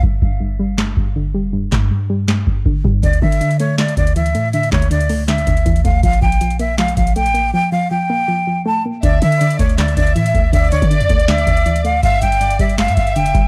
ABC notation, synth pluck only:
X:1
M:4/4
L:1/8
Q:1/4=160
K:Dm
V:1 name="Synth pluck" clef=bass
G,, G,, G,, G, G,, G,, D, G, | G,, G,, G,, G, G,, G,, D, G, | D, D, D, A, D, D, E, A, | D, D, D, A, D, D, E, A, |
F, F, F, B, F, F, A, B, | F, F, F, B, F, F, A, B, | D, D, D, A, D, D, E, A, | D, D, D, A, D, D, E, A, |
G,, G,, G,, G, G,, G,, D, G, |]